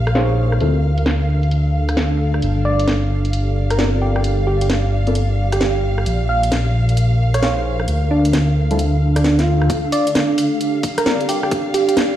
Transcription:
Already playing: detuned saw bass A#1, ambient pad A#4 F5, violin section F5
0.07 cross-stick, closed hi-hat
0.15 synth stab D#4 G#4 C5 C#5 F5, snare
0.52 cross-stick
0.61 detuned saw bass D2, synth stab G3 C4 E4 F4 A4, ambient pad D4, closed hi-hat
0.76 ambient pad A4
0.98 closed hi-hat
1.06 snare, closed hi-hat
1.43 closed hi-hat
1.51 closed hi-hat
1.89 cross-stick, closed hi-hat
1.97 snare
2.34 cross-stick
2.42 detuned saw bass G1, ambient pad G4, violin section F5, closed hi-hat
2.65 ambient pad D5, soft synth lead D5
2.80 closed hi-hat
2.88 snare, closed hi-hat
3.25 closed hi-hat
3.33 closed hi-hat
3.70 soft synth lead A#4, cross-stick, closed hi-hat
3.79 synth stab C4 F4 A4 A#4 D5, soft synth lead A#4, snare
4.02 soft synth lead G4
4.16 soft synth lead G4, cross-stick
4.24 closed hi-hat
4.47 soft synth lead G4
4.61 soft synth lead G4, closed hi-hat
4.70 snare, closed hi-hat
5.07 synth stab C4 F4 A4 A#4 D5, closed hi-hat
5.15 closed hi-hat
5.52 soft synth lead G4, cross-stick, closed hi-hat
5.61 snare
5.98 cross-stick
6.06 detuned saw bass A#1, ambient pad A#4, closed hi-hat
6.29 soft synth lead F5, ambient pad F5
6.43 closed hi-hat
6.52 snare, closed hi-hat
6.89 closed hi-hat
6.97 closed hi-hat
7.34 soft synth lead C#5, cross-stick, closed hi-hat
7.42 synth stab D#4 G#4 C5 C#5 F5, soft synth lead C#5, snare
7.80 cross-stick
7.88 detuned saw bass D2, ambient pad D4, closed hi-hat
8.10 soft synth lead D4, ambient pad A4
8.25 closed hi-hat
8.33 snare, closed hi-hat
8.71 synth stab G3 C4 E4 F4 A4, closed hi-hat
8.79 closed hi-hat
9.16 soft synth lead D4, cross-stick, closed hi-hat
9.24 soft synth lead D4, snare
9.39 soft synth lead F4, snare, closed hi-hat
9.62 cross-stick
9.70 ambient pad G4, violin section F5, kick, closed hi-hat
9.92 soft synth lead D5, open hi-hat
10.07 ambient pad D5, closed hi-hat
10.15 snare, closed hi-hat
10.38 open hi-hat
10.61 closed hi-hat
10.83 kick, open hi-hat
10.98 soft synth lead A#4, cross-stick, closed hi-hat
11.06 synth stab C4 F4 A4 A#4 D5, soft synth lead A#4, snare
11.21 closed hi-hat
11.29 soft synth lead G4, open hi-hat
11.43 soft synth lead G4, cross-stick
11.51 kick, closed hi-hat
11.74 soft synth lead G4, open hi-hat
11.88 soft synth lead G4, closed hi-hat
11.97 snare, closed hi-hat

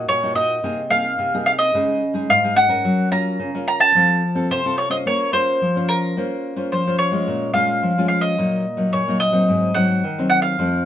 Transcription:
Already playing: nylon-string guitar A#3 D#4 F#4
0.09 nylon-string guitar A#2, mandolin C#5
0.23 nylon-string guitar A#3 D#4 F#4
0.34 nylon-string guitar A#3 D#4 F#4, mandolin D#5
0.64 nylon-string guitar C3 A#3 D#4 G#4
0.90 nylon-string guitar A#3 D#4 G#4, mandolin F5
1.19 nylon-string guitar C3
1.34 nylon-string guitar A#3 D#4 G#4
1.46 mandolin F5
1.59 mandolin D#5
1.75 nylon-string guitar C#3 G#3 D#4 G#4
2.14 nylon-string guitar G#3 D#4 G#4
2.30 nylon-string guitar G#2, mandolin F5
2.44 nylon-string guitar G#3 D#4 G#4
2.56 mandolin F#5
2.68 nylon-string guitar C#4 A#4
2.85 nylon-string guitar F#3
3.11 nylon-string guitar C#4 F4 A#4, mandolin A#5
3.39 nylon-string guitar C#3
3.55 nylon-string guitar C#4 F4 A#4
3.68 mandolin A#5
3.80 mandolin A5
3.95 nylon-string guitar F3 C4 F4 A4
4.35 nylon-string guitar C4 F4 A4
4.51 nylon-string guitar C3, mandolin C5
4.65 nylon-string guitar C4 F4 A4
4.78 mandolin C#5
4.90 nylon-string guitar C#4 F4 C5, mandolin D#5
5.06 nylon-string guitar A#3, mandolin C#5
5.33 nylon-string guitar C#4 F4 C5, mandolin C5
5.62 nylon-string guitar F3
5.76 nylon-string guitar C#4 F4 C5
5.89 mandolin A#4
6.17 nylon-string guitar A#3 C#4 F4 C5
6.56 nylon-string guitar C#4 F4 C5
6.72 nylon-string guitar F3, mandolin C5
6.87 nylon-string guitar C#4 F4 C5
6.99 mandolin C#5
7.12 nylon-string guitar G#3 C#4 F4
7.27 nylon-string guitar A#2
7.53 nylon-string guitar G#3 C#4 F4, mandolin F5
7.83 nylon-string guitar F3
7.98 nylon-string guitar G#3 C#4 F4
8.08 mandolin F5
8.21 mandolin D#5
8.38 nylon-string guitar A#2 F#3 A#3 D#4
8.77 nylon-string guitar F#3 A#3 D#4
8.93 nylon-string guitar A#2, mandolin C#5
9.08 nylon-string guitar F#3 A#3 D#4
9.20 mandolin D#5
9.32 nylon-string guitar F#3 C4 D#4
9.48 nylon-string guitar G#2
9.75 nylon-string guitar F#3 C4 D#4, mandolin F#5
10.04 nylon-string guitar D#3
10.18 nylon-string guitar F#3 C4 D#4
10.30 mandolin F#5
10.42 mandolin F5
10.59 nylon-string guitar F2 F3 A3 C4

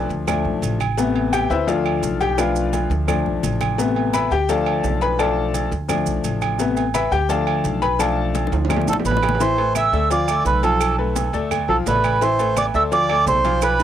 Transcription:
Already playing: upright piano F3 A3 D4
0.09 upright bass D2, cowbell, high conga, maracas
0.27 upright piano F3 A3 D4, cowbell, high conga, low conga, low agogo, claves, maracas
0.44 upright bass B1, high conga, low conga
0.62 upright bass A1, cowbell, high conga, low agogo, maracas
0.80 cowbell, high conga, low agogo, claves, maracas
0.97 upright piano C3 A3 B3, cowbell, high conga, low agogo, maracas
1.16 high conga, low agogo
1.33 upright piano G4 G5, cowbell, high conga, low agogo, claves, maracas
1.50 upright bass D2, upright piano E4 B4 C5 E5, maracas
1.67 upright piano F3 A3 D4 F4 A4 D5 F5, cowbell, high conga, low agogo, maracas
1.86 high conga, low agogo, claves
2.03 upright bass B1, cowbell, high conga, maracas
2.21 upright piano G4 G5, cowbell, low agogo, maracas
2.38 upright piano F3 A3 D4 F4 B4 D5 F5, cowbell, high bongo, low agogo, claves, maracas
2.56 high conga, maracas
2.73 cowbell, high bongo, high conga, low agogo, maracas
2.90 upright bass D2, cowbell, high bongo, high conga, maracas
3.08 upright piano F3 A3 D4, cowbell, high conga, low conga, low agogo, claves, maracas
3.25 upright bass B1, high conga, low conga
3.43 upright bass A1, cowbell, low bongo, high conga, low agogo, maracas
3.61 cowbell, low bongo, high conga, low agogo, claves, maracas
3.78 upright piano C3 A3 B3, cowbell, high conga, low agogo, maracas
3.96 low agogo
4.13 upright piano B4 E5 B5, cowbell, high conga, low agogo, claves, maracas
4.31 upright bass D2, upright piano G4 G5, maracas
4.49 upright piano F3 A3 D4 A4 D5 F5 A5, cowbell, low agogo, maracas
4.66 high conga, low agogo, claves
4.83 upright bass B1, cowbell, high conga, low timbale, maracas
5.01 upright piano B4 B5, cowbell, low agogo, maracas
5.19 upright piano F3 A3 D4 A4 D5 F5 A5, cowbell, high conga, low agogo, claves, maracas
5.37 high conga
5.54 cowbell, high conga, low agogo, maracas
5.71 upright bass D2, cowbell, high conga, maracas
5.89 upright piano F3 A3 D4, cowbell, high conga, low conga, low agogo, claves, maracas
6.06 upright bass B1, maracas
6.24 upright bass A1, cowbell, high conga, low agogo, maracas
6.42 cowbell, high conga, low agogo, claves, maracas
6.59 upright piano C3 A3 B3, cowbell, high conga, low agogo, maracas
6.77 low agogo, maracas
6.94 upright piano B4 E5 B5, cowbell, high conga, low agogo, claves, maracas
7.11 upright bass D2, upright piano G4 G5, maracas
7.29 upright piano F3 A3 D4 A4 D5 F5 A5, cowbell, high conga, low agogo, maracas
7.47 low agogo, claves
7.64 upright bass B1, cowbell, high conga, maracas
7.82 upright piano B4 B5, cowbell, low agogo, maracas
7.99 upright piano F3 A3 D4 A4 D5 F5 A5, cowbell, low agogo, claves, maracas
8.18 high conga
8.35 cowbell, high bongo, high conga, low agogo, maracas
8.47 high bongo
8.52 upright bass D2, cowbell, high conga, high timbale, maracas
8.65 high timbale
8.69 upright piano F3 A3 D4, cowbell, high bongo, high conga, low conga, low agogo, claves, maracas
8.76 low timbale
8.81 low bongo
8.87 upright bass B1, melodica A4 A5, high conga, low conga, high timbale, maracas
8.93 low bongo
9.00 low timbale
9.05 upright bass A1, melodica B4 B5, cowbell, low bongo, high conga, low agogo, maracas
9.11 low timbale
9.17 low bongo
9.22 cowbell, high conga, low timbale, low agogo, claves, maracas
9.29 low bongo
9.35 low timbale
9.40 upright piano E3 E4 E5, melodica C5 C6, cowbell, low agogo, maracas
9.58 upright piano A3 A4 B4, high conga, low agogo
9.75 melodica E5 E6, cowbell, high conga, low agogo, claves, maracas
9.92 upright bass D2, upright piano A3 A4 D5, maracas
10.10 upright piano F3 F4 F5, melodica D5 D6, cowbell, low agogo, maracas
10.28 upright piano A3 A4 D5, high conga, low agogo, claves, maracas
10.45 upright bass B1, melodica B4 B5, cowbell, high conga, maracas
10.63 upright piano F3 F4 F5, melodica A4 A5, cowbell, low agogo, maracas
10.81 cowbell, low agogo, claves, maracas
10.98 upright piano A3 A4 B4, high conga
11.16 cowbell, high conga, low agogo, maracas
11.33 upright bass D2, upright piano A3 A4 D5, cowbell, high conga, maracas
11.51 cowbell, high conga, low conga, low agogo, claves, maracas
11.68 upright bass B1, upright piano F3 F4 F5, melodica A4 A5, high conga
11.86 upright bass A1, upright piano A3 A4 D5, melodica B4 B5, cowbell, high conga, low timbale, low agogo, maracas
12.04 cowbell, high conga, low agogo, claves, maracas
12.21 upright piano E3 E4 E5, melodica C5 C6, cowbell, high conga, low agogo, maracas
12.39 upright piano A3 A4 B4, high conga, low agogo, maracas
12.57 melodica D5 D6, cowbell, high conga, low agogo, claves, maracas
12.74 upright bass D2, upright piano A3 A4 D5, melodica E5 E6, maracas
12.92 upright piano F3 F4 F5, melodica D5 D6, cowbell, high conga, low agogo, maracas
13.09 upright piano A3 A4 D5, high conga, low agogo, claves
13.26 upright bass B1, melodica C5 C6, cowbell, high conga, low timbale, maracas
13.44 upright piano F3 F4 F5, cowbell, low agogo, maracas
13.62 melodica B4 B5, cowbell, high conga, high timbale, low agogo, claves, maracas
13.80 upright piano A3, high conga, high timbale, maracas

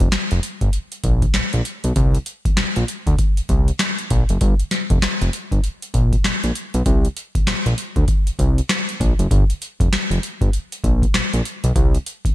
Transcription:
0.00 analog synth bass F1, kick, closed hi-hat
0.12 snare, clap, closed hi-hat
0.31 analog synth bass F1, closed hi-hat
0.43 closed hi-hat
0.61 analog synth bass G1, kick, closed hi-hat
0.73 closed hi-hat
0.92 closed hi-hat
1.04 analog synth bass A#1, kick, closed hi-hat
1.22 kick, closed hi-hat
1.34 analog synth bass A#1, snare, clap, closed hi-hat
1.53 analog synth bass A#1, closed hi-hat
1.65 closed hi-hat
1.84 analog synth bass B1, closed hi-hat
1.96 analog synth bass C2, kick, closed hi-hat
2.15 closed hi-hat
2.26 closed hi-hat
2.45 analog synth bass A#1, kick, closed hi-hat
2.57 analog synth bass A#1, snare, clap, closed hi-hat
2.76 analog synth bass A#1, closed hi-hat
2.88 closed hi-hat
3.07 analog synth bass D2, kick, closed hi-hat
3.19 kick, closed hi-hat
3.37 closed hi-hat
3.49 analog synth bass C2, kick, closed hi-hat
3.68 closed hi-hat
3.79 snare, clap, closed hi-hat
3.99 closed hi-hat
4.10 analog synth bass A#1, kick, closed hi-hat
4.29 analog synth bass F#1, closed hi-hat
4.41 analog synth bass G1, kick, closed hi-hat
4.60 closed hi-hat
4.71 snare, closed hi-hat
4.90 analog synth bass F1, kick, closed hi-hat
5.02 snare, clap, closed hi-hat
5.21 analog synth bass F1, closed hi-hat
5.33 closed hi-hat
5.52 analog synth bass G1, kick, closed hi-hat
5.64 closed hi-hat
5.82 closed hi-hat
5.94 analog synth bass A#1, kick, closed hi-hat
6.13 kick, closed hi-hat
6.25 analog synth bass A#1, snare, clap, closed hi-hat
6.44 analog synth bass A#1, closed hi-hat
6.55 closed hi-hat
6.74 analog synth bass B1, closed hi-hat
6.86 analog synth bass C2, kick, closed hi-hat
7.05 closed hi-hat
7.17 closed hi-hat
7.35 analog synth bass A#1, kick, closed hi-hat
7.47 analog synth bass A#1, snare, clap, closed hi-hat
7.66 analog synth bass A#1, closed hi-hat
7.78 closed hi-hat
7.96 analog synth bass D2, kick, closed hi-hat
8.08 kick, closed hi-hat
8.27 closed hi-hat
8.39 analog synth bass C2, kick, closed hi-hat
8.58 closed hi-hat
8.69 snare, clap, closed hi-hat
8.89 closed hi-hat
9.00 analog synth bass A#1, kick, closed hi-hat
9.19 analog synth bass F#1, closed hi-hat
9.31 analog synth bass G1, kick, closed hi-hat
9.50 closed hi-hat
9.62 closed hi-hat
9.80 analog synth bass F1, kick, closed hi-hat
9.93 snare, clap, closed hi-hat
10.11 analog synth bass F1, closed hi-hat
10.23 closed hi-hat
10.41 analog synth bass G1, kick, closed hi-hat
10.53 closed hi-hat
10.72 closed hi-hat
10.84 analog synth bass A#1, kick, closed hi-hat
11.02 kick, closed hi-hat
11.14 analog synth bass A#1, snare, clap, closed hi-hat
11.34 analog synth bass A#1, closed hi-hat
11.45 closed hi-hat
11.64 analog synth bass B1, closed hi-hat
11.76 analog synth bass C2, kick, closed hi-hat
11.95 closed hi-hat
12.06 closed hi-hat
12.25 analog synth bass A#1, kick, closed hi-hat

